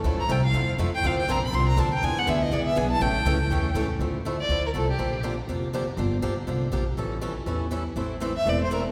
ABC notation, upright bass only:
X:1
M:4/4
L:1/8
Q:"Swing" 1/4=242
K:Dm
V:1 name="Upright bass" clef=bass
D,, z C,,2 E,,2 F,,2 | D,,2 B,,,2 C,,2 D,,2 | E,,2 D,,2 ^C,,2 =B,,,2 | A,,,2 ^C,,2 E,,2 A,,2 |
D,,4 D,,2 C,,2 | B,,,4 F,,,4 | G,,,2 D,,2 C,,2 B,,,2 | A,,,4 E,,4 |
A,,,4 E,,,4 |]